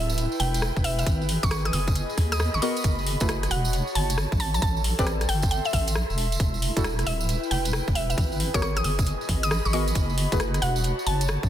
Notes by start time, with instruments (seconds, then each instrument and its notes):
Already playing: wobble bass D1, analog synth pad E4 B4 G5, synth pluck E5
0.09 tambourine
0.18 closed hi-hat, tambourine
0.32 tambourine
0.40 wobble bass E1, synth pluck G5, open hi-hat
0.54 closed hi-hat, tambourine
0.62 cross-stick, tambourine
0.76 wobble bass E1, kick, tambourine
0.84 synth pluck E5, open hi-hat
0.99 synth pluck E5, closed hi-hat, tambourine
1.06 wobble bass G#1, analog synth pad G#4, kick, closed hi-hat, tambourine
1.22 tambourine
1.29 open hi-hat
1.43 wobble bass G#1, synth pluck C#6, kick, closed hi-hat, tambourine
1.47 analog synth pad D#5, synth pluck C#6, cross-stick, closed hi-hat
1.51 tambourine
1.65 synth pluck D#6, cross-stick, closed hi-hat, tambourine
1.73 wobble bass F#1, synth pluck D#6, open hi-hat
1.87 analog synth pad B5, kick, closed hi-hat, tambourine
1.95 closed hi-hat, tambourine
2.10 tambourine
2.18 wobble bass D#2, kick, cross-stick, open hi-hat
2.32 synth pluck D#6, cross-stick, closed hi-hat, tambourine
2.39 cross-stick, tambourine
2.54 wobble bass G#1, synth pluck C#6, tambourine
2.62 synth stab B3 F#4 G#4 A#4 D#5, synth pluck C#6, open hi-hat
2.77 closed hi-hat, tambourine
2.84 wobble bass F#1, analog synth pad F#4, kick, closed hi-hat, tambourine
2.99 tambourine
3.07 open hi-hat
3.20 wobble bass F#1, synth stab A3 E4 F#4 G#4 B4, kick, closed hi-hat, tambourine
3.29 cross-stick, closed hi-hat, tambourine
3.43 analog synth pad C#5, cross-stick, closed hi-hat, tambourine
3.51 wobble bass E1, synth pluck F#5, open hi-hat
3.55 analog synth pad A5
3.65 tambourine
3.73 closed hi-hat, tambourine
3.87 tambourine
3.95 wobble bass F#1, synth pluck A5, open hi-hat
4.10 closed hi-hat, tambourine
4.18 cross-stick, tambourine
4.32 wobble bass A1, kick, tambourine
4.40 analog synth pad A4, synth pluck A5, open hi-hat
4.54 synth pluck A5, closed hi-hat, tambourine
4.62 wobble bass A1, synth pluck A5, kick, closed hi-hat, tambourine
4.77 tambourine
4.84 open hi-hat
4.92 analog synth pad E5
4.99 wobble bass A1, synth stab C4 G4 A4 B4 D5, kick, closed hi-hat, tambourine
5.07 cross-stick, closed hi-hat, tambourine
5.21 analog synth pad C6, cross-stick, closed hi-hat, tambourine
5.29 wobble bass G1, synth pluck G5, open hi-hat
5.42 kick, closed hi-hat, tambourine
5.51 synth pluck G5, closed hi-hat, tambourine
5.65 synth pluck E5, tambourine
5.73 wobble bass A1, synth pluck E5, kick, open hi-hat
5.87 closed hi-hat, tambourine
5.95 cross-stick, tambourine
6.10 wobble bass E1, tambourine
6.18 analog synth pad E4, open hi-hat
6.32 closed hi-hat, tambourine
6.40 wobble bass E1, kick, closed hi-hat, tambourine
6.54 tambourine
6.62 open hi-hat
6.73 wobble bass E1, synth stab G3 D4 E4 F#4 A4, analog synth pad B4, kick, tambourine
6.77 closed hi-hat
6.84 cross-stick, closed hi-hat, tambourine
6.99 cross-stick, closed hi-hat, tambourine
7.07 wobble bass D1, synth pluck E5, analog synth pad G5, open hi-hat
7.21 tambourine
7.29 closed hi-hat, tambourine
7.43 tambourine
7.51 wobble bass E1, synth pluck G5, open hi-hat
7.65 closed hi-hat, tambourine
7.73 cross-stick, tambourine
7.88 wobble bass E1, kick, tambourine
7.95 synth pluck E5, open hi-hat
8.10 synth pluck E5, closed hi-hat, tambourine
8.18 wobble bass G#1, analog synth pad G#4, kick, closed hi-hat, tambourine
8.32 tambourine
8.40 open hi-hat
8.54 wobble bass G#1, synth stab B3 F#4 G#4 A#4 C#5, synth pluck C#6, kick, closed hi-hat, tambourine
8.62 analog synth pad D#5, synth pluck C#6, cross-stick, closed hi-hat, tambourine
8.76 synth pluck D#6, cross-stick, closed hi-hat, tambourine
8.84 wobble bass F#1, synth pluck D#6, open hi-hat
8.99 analog synth pad B5, kick, closed hi-hat, tambourine
9.06 closed hi-hat, tambourine
9.21 tambourine
9.29 wobble bass G#1, kick, open hi-hat
9.43 synth pluck D#6, closed hi-hat, tambourine
9.51 cross-stick, tambourine
9.65 wobble bass G#1, synth pluck C#6, tambourine
9.73 synth stab B3 F#4 G#4 A#4 D#5, synth pluck C#6, open hi-hat
9.88 closed hi-hat, tambourine
9.95 wobble bass F#1, analog synth pad F#4, kick, closed hi-hat, tambourine
10.10 tambourine
10.18 open hi-hat
10.32 wobble bass F#1, synth stab A3 E4 F#4 G#4 B4, kick, closed hi-hat, tambourine
10.40 cross-stick, closed hi-hat, tambourine
10.54 cross-stick, closed hi-hat, tambourine
10.60 wobble bass E1, analog synth pad C#5, synth pluck F#5, open hi-hat
10.66 analog synth pad A5
10.76 tambourine
10.84 closed hi-hat, tambourine
10.99 tambourine
11.06 wobble bass F#1, synth pluck A5, open hi-hat
11.21 closed hi-hat, tambourine
11.28 cross-stick, tambourine
11.43 wobble bass A1, kick, tambourine